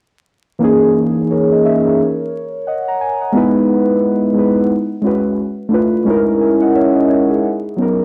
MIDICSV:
0, 0, Header, 1, 2, 480
1, 0, Start_track
1, 0, Tempo, 681818
1, 429, Time_signature, 4, 2, 24, 8
1, 5665, End_track
2, 0, Start_track
2, 0, Title_t, "Synth keys"
2, 0, Program_c, 0, 88
2, 415, Note_on_c, 0, 52, 89
2, 423, Note_on_c, 0, 58, 97
2, 433, Note_on_c, 0, 61, 76
2, 441, Note_on_c, 0, 63, 79
2, 451, Note_on_c, 0, 68, 103
2, 568, Control_c, 0, 64, 127
2, 919, Note_on_c, 0, 73, 54
2, 926, Note_on_c, 0, 70, 48
2, 1008, Note_off_c, 0, 52, 0
2, 1012, Note_off_c, 0, 58, 0
2, 1017, Note_off_c, 0, 61, 0
2, 1021, Note_off_c, 0, 63, 0
2, 1026, Note_off_c, 0, 68, 0
2, 1052, Note_off_c, 0, 73, 0
2, 1056, Note_off_c, 0, 70, 0
2, 1071, Note_on_c, 0, 75, 56
2, 1153, Note_off_c, 0, 75, 0
2, 1162, Note_on_c, 0, 76, 69
2, 1163, Note_on_c, 0, 73, 53
2, 1293, Note_off_c, 0, 73, 0
2, 1294, Note_off_c, 0, 76, 0
2, 1302, Note_on_c, 0, 73, 56
2, 1306, Note_on_c, 0, 70, 42
2, 1399, Control_c, 0, 64, 0
2, 1508, Control_c, 0, 64, 127
2, 1526, Note_off_c, 0, 73, 0
2, 1529, Note_off_c, 0, 70, 0
2, 1880, Note_on_c, 0, 78, 59
2, 1885, Note_on_c, 0, 75, 45
2, 2013, Note_off_c, 0, 78, 0
2, 2016, Note_off_c, 0, 75, 0
2, 2028, Note_on_c, 0, 82, 63
2, 2034, Note_on_c, 0, 78, 55
2, 2111, Note_off_c, 0, 82, 0
2, 2115, Note_off_c, 0, 78, 0
2, 2118, Note_on_c, 0, 80, 65
2, 2252, Note_off_c, 0, 80, 0
2, 2262, Note_on_c, 0, 78, 54
2, 2264, Note_on_c, 0, 75, 47
2, 2340, Note_on_c, 0, 56, 91
2, 2349, Note_on_c, 0, 59, 87
2, 2359, Control_c, 0, 64, 0
2, 2359, Note_on_c, 0, 63, 94
2, 2366, Note_on_c, 0, 64, 87
2, 2374, Note_on_c, 0, 71, 104
2, 2475, Control_c, 0, 64, 127
2, 2486, Note_off_c, 0, 78, 0
2, 2488, Note_off_c, 0, 75, 0
2, 2930, Note_off_c, 0, 56, 0
2, 2935, Note_off_c, 0, 59, 0
2, 2940, Note_off_c, 0, 63, 0
2, 2944, Note_off_c, 0, 64, 0
2, 2948, Note_off_c, 0, 71, 0
2, 3049, Note_on_c, 0, 56, 81
2, 3058, Note_on_c, 0, 59, 61
2, 3070, Note_on_c, 0, 63, 61
2, 3076, Note_on_c, 0, 64, 66
2, 3088, Note_on_c, 0, 71, 82
2, 3299, Note_off_c, 0, 56, 0
2, 3303, Note_off_c, 0, 59, 0
2, 3310, Note_off_c, 0, 63, 0
2, 3313, Note_off_c, 0, 64, 0
2, 3318, Control_c, 0, 64, 0
2, 3319, Note_off_c, 0, 71, 0
2, 3445, Control_c, 0, 64, 127
2, 3531, Note_on_c, 0, 56, 77
2, 3541, Note_on_c, 0, 61, 68
2, 3551, Note_on_c, 0, 64, 61
2, 3556, Note_on_c, 0, 66, 66
2, 3567, Note_on_c, 0, 71, 77
2, 3780, Note_off_c, 0, 56, 0
2, 3785, Note_off_c, 0, 61, 0
2, 3790, Note_off_c, 0, 64, 0
2, 3793, Note_off_c, 0, 66, 0
2, 3797, Control_c, 0, 64, 0
2, 3798, Note_off_c, 0, 71, 0
2, 3923, Control_c, 0, 64, 127
2, 4004, Note_on_c, 0, 57, 84
2, 4014, Note_on_c, 0, 62, 62
2, 4023, Note_on_c, 0, 64, 59
2, 4033, Note_on_c, 0, 65, 69
2, 4042, Note_on_c, 0, 71, 85
2, 4217, Note_off_c, 0, 57, 0
2, 4221, Note_off_c, 0, 62, 0
2, 4226, Note_off_c, 0, 64, 0
2, 4231, Note_off_c, 0, 65, 0
2, 4236, Note_off_c, 0, 71, 0
2, 4258, Note_on_c, 0, 56, 85
2, 4268, Note_on_c, 0, 61, 96
2, 4276, Note_on_c, 0, 63, 85
2, 4279, Control_c, 0, 64, 0
2, 4283, Note_on_c, 0, 64, 91
2, 4295, Note_on_c, 0, 70, 95
2, 4398, Control_c, 0, 64, 127
2, 4512, Note_on_c, 0, 80, 48
2, 4513, Note_off_c, 0, 63, 0
2, 4516, Note_off_c, 0, 64, 0
2, 4519, Note_on_c, 0, 76, 43
2, 4522, Note_off_c, 0, 70, 0
2, 4649, Note_off_c, 0, 80, 0
2, 4653, Note_off_c, 0, 76, 0
2, 4657, Note_on_c, 0, 78, 64
2, 4663, Note_on_c, 0, 75, 53
2, 4746, Note_off_c, 0, 78, 0
2, 4749, Note_off_c, 0, 75, 0
2, 4753, Note_on_c, 0, 76, 70
2, 4757, Note_on_c, 0, 73, 58
2, 4850, Note_off_c, 0, 56, 0
2, 4854, Note_off_c, 0, 61, 0
2, 4889, Note_off_c, 0, 76, 0
2, 4892, Note_off_c, 0, 73, 0
2, 4898, Note_on_c, 0, 75, 62
2, 4986, Note_off_c, 0, 75, 0
2, 4997, Note_on_c, 0, 73, 62
2, 5002, Note_on_c, 0, 70, 57
2, 5132, Note_off_c, 0, 73, 0
2, 5134, Note_off_c, 0, 70, 0
2, 5141, Note_on_c, 0, 68, 58
2, 5148, Note_on_c, 0, 64, 45
2, 5238, Control_c, 0, 64, 0
2, 5365, Control_c, 0, 64, 127
2, 5366, Note_off_c, 0, 68, 0
2, 5370, Note_off_c, 0, 64, 0
2, 5467, Note_on_c, 0, 54, 76
2, 5478, Note_on_c, 0, 59, 65
2, 5486, Note_on_c, 0, 61, 67
2, 5495, Note_on_c, 0, 63, 72
2, 5506, Note_on_c, 0, 70, 84
2, 5665, Note_off_c, 0, 54, 0
2, 5665, Note_off_c, 0, 59, 0
2, 5665, Note_off_c, 0, 61, 0
2, 5665, Note_off_c, 0, 63, 0
2, 5665, Note_off_c, 0, 70, 0
2, 5665, End_track
0, 0, End_of_file